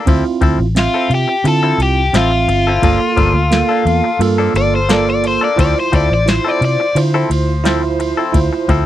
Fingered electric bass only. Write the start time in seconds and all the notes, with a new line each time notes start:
0.07 D2
0.42 D2
0.58 A1
1.10 C3
1.44 D3
1.78 C2
2.14 A1
2.48 G1
2.82 G1
3.17 G1
3.33 D2
3.85 E2
4.19 G2
4.54 G1
5.58 D2
5.92 D2
6.10 A1
6.61 C3
6.95 D3
7.30 D2
8.34 D2
8.68 D2